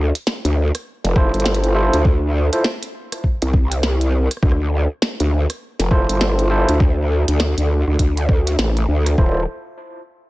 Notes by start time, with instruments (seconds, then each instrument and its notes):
Already playing: wobble bass D2
0.15 closed hi-hat
0.27 snare
0.45 wobble bass D2, closed hi-hat
0.75 cross-stick, closed hi-hat
1.04 wobble bass F1, snare, closed hi-hat
1.16 tine electric piano E4 F4 A4 C5, kick, cross-stick
1.34 wobble bass G1, closed hi-hat
1.40 closed hi-hat
1.46 snare, closed hi-hat
1.55 closed hi-hat
1.64 closed hi-hat
1.75 tine electric piano E4 F4 A4 C5
1.93 wobble bass D2, closed hi-hat
2.05 kick
2.53 tine electric piano E4 F4 A4 C5, closed hi-hat
2.64 snare
2.83 closed hi-hat
3.12 cross-stick, closed hi-hat
3.24 kick
3.42 wobble bass C2, closed hi-hat
3.54 kick
3.72 closed hi-hat
3.83 snare
4.01 closed hi-hat
4.31 cross-stick, closed hi-hat
4.37 cross-stick
4.43 wobble bass D2, kick, cross-stick
4.52 cross-stick
5.02 snare
5.20 wobble bass D2, closed hi-hat
5.50 cross-stick, closed hi-hat
5.79 wobble bass F1, snare, closed hi-hat
5.91 tine electric piano E4 F4 A4 C5, kick, cross-stick
6.09 wobble bass G1, closed hi-hat
6.21 snare
6.39 closed hi-hat
6.51 tine electric piano E4 F4 A4 C5
6.69 wobble bass D2, closed hi-hat
6.80 kick
7.28 wobble bass D2, closed hi-hat
7.40 snare
7.58 wobble bass D2, closed hi-hat
7.87 wobble bass D2, cross-stick
7.99 wobble bass D2, kick, closed hi-hat
8.17 closed hi-hat
8.29 kick
8.47 closed hi-hat
8.59 wobble bass A1, snare
8.77 closed hi-hat
8.88 wobble bass D2
9.06 cross-stick, closed hi-hat
9.18 wobble bass D1, tine electric piano E4 F4 A4 C5, kick